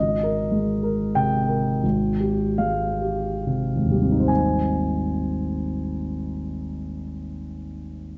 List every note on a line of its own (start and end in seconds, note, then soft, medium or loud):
0.00 1.79 G#1 soft
0.00 1.13 D#5 medium
0.23 0.70 A#4 soft
0.52 1.01 G#3 soft
0.83 1.34 A#4 soft
1.15 1.69 C3 soft
1.15 2.60 G5 medium
1.48 1.83 A#4 soft
1.84 3.74 G#1 soft
2.20 2.84 G4 soft
2.58 3.28 G#3 soft
2.58 4.28 F5 medium
3.02 3.74 G4 soft
3.47 4.14 C3 soft
3.76 6.85 G#1 soft
3.85 6.94 D#2 soft
3.91 7.03 G3 soft
3.91 4.29 G4 soft
4.02 7.11 C4 soft
4.11 7.20 D#4 soft
4.20 7.29 C5 soft
4.28 7.37 G#5 soft